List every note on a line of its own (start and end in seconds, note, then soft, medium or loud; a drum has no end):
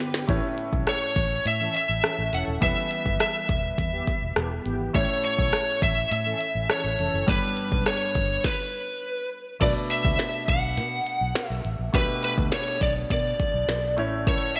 0.00 0.24 D3 medium
0.00 0.24 G3 medium
0.00 0.24 B3 medium
0.00 0.25 D4 medium
0.00 0.24 G4 loud
0.00 0.25 B4 medium
0.00 snare medium
0.14 snare medium
0.27 0.40 A1 medium
0.27 1.12 A2 medium
0.27 2.57 A3 medium
0.27 2.58 C#4 medium
0.27 2.58 E4 medium
0.27 2.58 C#5 medium
0.27 kick loud
0.27 closed hi-hat medium
0.58 closed hi-hat medium
0.73 0.84 B1 medium
0.73 kick medium
0.87 1.47 C#5 medium
0.87 cross-stick medium
0.87 closed hi-hat medium
1.16 1.38 A1 medium
1.16 kick medium
1.16 closed hi-hat medium
1.45 1.67 A2 medium
1.45 1.75 E5 medium
1.45 closed hi-hat loud
1.60 1.72 E3 medium
1.60 1.72 C#4 medium
1.60 1.72 A4 medium
1.75 2.36 E5 medium
1.75 closed hi-hat medium
1.89 2.00 A1 medium
2.04 2.16 E3 medium
2.04 2.16 C#4 medium
2.04 2.16 A4 medium
2.04 cross-stick loud
2.04 closed hi-hat medium
2.19 2.29 A1 medium
2.33 2.44 E1 medium
2.33 2.58 E3 medium
2.33 2.58 C#4 medium
2.33 2.58 A4 loud
2.33 2.42 F#5 medium
2.33 closed hi-hat medium
2.48 2.58 D#1 medium
2.61 2.73 E1 loud
2.61 3.45 E3 medium
2.61 4.90 G3 medium
2.61 4.91 B3 medium
2.61 4.91 E4 medium
2.61 4.91 B4 medium
2.61 3.20 E5 loud
2.61 kick loud
2.61 closed hi-hat medium
2.91 closed hi-hat medium
3.06 3.17 G1 medium
3.06 kick medium
3.20 4.33 E5 medium
3.20 cross-stick medium
3.20 closed hi-hat medium
3.49 3.71 E1 medium
3.49 kick medium
3.49 closed hi-hat medium
3.78 4.00 E2 loud
3.78 kick medium
3.78 closed hi-hat loud
3.93 4.05 E3 medium
3.93 4.05 B3 medium
3.93 4.05 G4 medium
4.07 kick medium
4.07 closed hi-hat medium
4.22 4.33 E1 medium
4.36 4.58 E1 medium
4.36 4.49 E3 medium
4.36 4.49 B3 medium
4.36 4.49 G4 medium
4.36 cross-stick loud
4.36 closed hi-hat medium
4.66 4.88 G#1 medium
4.66 4.90 E3 medium
4.66 4.90 B3 medium
4.66 4.90 G4 loud
4.66 closed hi-hat medium
4.93 5.06 A1 loud
4.93 5.78 A2 medium
4.93 7.23 A3 medium
4.93 7.24 C#4 medium
4.93 7.24 E4 medium
4.93 5.23 C#5 medium
4.93 7.24 C#5 medium
4.93 kick loud
4.93 closed hi-hat medium
5.24 5.83 C#5 medium
5.24 closed hi-hat medium
5.39 5.49 B1 medium
5.39 kick medium
5.53 cross-stick medium
5.53 closed hi-hat medium
5.82 6.04 A1 medium
5.82 6.10 E5 loud
5.82 kick medium
5.82 closed hi-hat medium
6.11 6.33 A2 loud
6.11 6.70 E5 medium
6.11 closed hi-hat loud
6.26 6.38 E3 medium
6.26 6.38 C#4 medium
6.26 6.38 A4 medium
6.41 closed hi-hat medium
6.55 6.66 A1 medium
6.70 6.82 E3 medium
6.70 6.82 C#4 medium
6.70 6.82 A4 medium
6.70 7.30 C#5 medium
6.70 cross-stick loud
6.70 closed hi-hat medium
6.84 6.95 A1 medium
6.99 7.10 F1 medium
6.99 7.24 E3 medium
6.99 7.24 C#4 medium
6.99 7.24 A4 loud
6.99 closed hi-hat medium
7.14 7.24 F#1 medium
7.26 7.39 G1 medium
7.26 8.11 G2 medium
7.26 8.41 G3 medium
7.26 8.42 B3 medium
7.26 8.42 D4 medium
7.26 8.42 B4 medium
7.26 7.83 B4 medium
7.26 kick loud
7.26 closed hi-hat medium
7.57 closed hi-hat medium
7.72 7.83 B1 medium
7.72 kick medium
7.86 8.47 C#5 medium
7.86 cross-stick medium
7.86 closed hi-hat medium
8.15 8.37 G1 medium
8.15 kick medium
8.15 closed hi-hat medium
8.44 9.28 B4 medium
8.44 kick loud
8.44 snare medium
9.60 9.72 B1 medium
9.60 10.44 B2 medium
9.60 11.89 A3 medium
9.60 11.90 D4 medium
9.60 11.90 F#4 medium
9.60 11.91 B4 medium
9.60 9.70 D5 loud
9.60 kick loud
9.60 closed hi-hat medium
9.60 crash medium
9.60 cowbell medium
9.90 10.45 E5 loud
9.90 closed hi-hat medium
10.05 10.16 C#2 medium
10.05 kick medium
10.19 snare medium
10.19 closed hi-hat medium
10.19 cowbell medium
10.48 10.79 B1 medium
10.48 11.49 F#5 loud
10.48 kick medium
10.48 closed hi-hat medium
10.77 10.99 B2 loud
10.77 closed hi-hat loud
10.77 cowbell medium
11.07 closed hi-hat medium
11.21 11.32 B1 medium
11.35 snare loud
11.35 closed hi-hat medium
11.35 cowbell medium
11.49 11.61 B1 medium
11.49 11.99 E5 loud
11.65 11.76 A1 medium
11.65 closed hi-hat medium
11.79 11.90 A#1 medium
11.93 12.05 B1 loud
11.93 12.77 B2 medium
11.93 13.93 A3 medium
11.93 13.94 D4 medium
11.93 13.94 G4 medium
11.93 13.94 B4 medium
11.93 12.22 B4 medium
11.93 kick loud
11.93 closed hi-hat medium
11.93 cowbell medium
12.23 12.32 B4 medium
12.23 closed hi-hat medium
12.38 12.49 D2 medium
12.38 kick medium
12.52 12.82 C#5 medium
12.52 snare loud
12.52 closed hi-hat medium
12.52 cowbell medium
12.81 13.03 B1 medium
12.81 12.90 D5 medium
12.81 kick medium
12.81 closed hi-hat medium
13.10 13.32 B2 medium
13.10 13.95 D5 medium
13.10 kick medium
13.10 closed hi-hat loud
13.10 cowbell medium
13.40 kick medium
13.40 closed hi-hat medium
13.54 13.65 B1 medium
13.68 13.98 B1 medium
13.68 snare loud
13.68 closed hi-hat loud
13.68 cowbell medium
13.97 14.31 A1 loud
13.97 14.60 A2 medium
13.97 14.60 A3 medium
13.97 14.60 C#4 medium
13.97 14.60 E4 medium
13.97 14.60 C#5 medium
13.97 closed hi-hat medium
14.27 14.56 C#5 loud
14.27 kick loud
14.27 closed hi-hat medium
14.27 cowbell medium
14.56 14.60 E5 loud
14.56 closed hi-hat medium